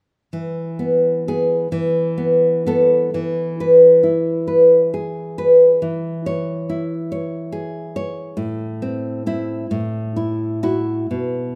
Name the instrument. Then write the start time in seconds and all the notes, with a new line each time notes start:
nylon-string guitar
0.33 E3
0.79 B3
1.28 B3 G#4
1.72 E3
2.17 B3
2.66 B3 A4
3.14 E3
3.60 B4
4.03 E4
4.47 B4
4.94 G#4
5.38 B4
5.82 E3
6.26 C#5
6.69 E4
7.12 C#5
7.52 G#4
7.96 C#5
8.37 A2
8.82 C4
9.26 C4 E4
9.71 A2
10.16 E4
10.63 E4 F#4
11.11 B2